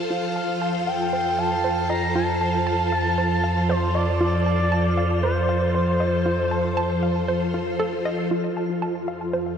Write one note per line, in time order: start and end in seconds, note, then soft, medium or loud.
0.00 8.30 F3 medium
0.00 8.31 F4 medium
0.00 8.31 A4 medium
0.00 8.31 C5 medium
0.00 8.32 F5 medium
0.10 8.28 F2 medium
0.10 0.28 F4 medium
0.10 0.89 F5 loud
0.36 0.54 A5 medium
0.62 0.72 A5 medium
0.87 1.12 F5 medium
0.87 1.40 G5 loud
1.13 1.23 C5 medium
1.39 1.63 F5 medium
1.39 1.89 A5 loud
1.64 1.75 C5 medium
1.90 2.07 D#5 medium
1.90 2.14 A#5 loud
2.15 2.33 F4 medium
2.15 3.71 A5 loud
2.41 2.59 A5 medium
2.67 2.77 A5 medium
2.92 3.17 F5 medium
3.18 3.29 C5 medium
3.44 3.68 F5 medium
3.69 3.80 C5 medium
3.69 3.96 C5 medium
3.95 4.20 D5 medium
3.95 4.13 D#5 medium
4.21 4.38 F4 medium
4.21 5.19 D5 loud
4.46 4.64 A5 medium
4.72 4.82 A5 medium
4.97 5.22 F5 medium
5.23 5.34 C5 medium
5.23 7.76 C5 medium
5.49 5.73 F5 medium
5.75 5.85 C5 medium
6.00 6.18 D#5 medium
6.26 6.43 F4 medium
6.51 6.69 A5 medium
6.77 6.88 A5 loud
7.03 7.27 F5 medium
7.28 7.39 C5 medium
7.54 7.72 F4 medium
7.80 7.97 A4 loud
8.05 8.23 D#5 medium
8.31 9.58 F2 medium
8.31 9.58 F3 medium
8.31 8.49 F4 medium
8.38 9.58 F4 loud
8.57 8.74 A5 medium
8.69 9.58 A4 medium
8.82 8.93 A5 medium
9.03 9.58 C5 medium
9.08 9.32 F5 medium
9.33 9.44 C5 medium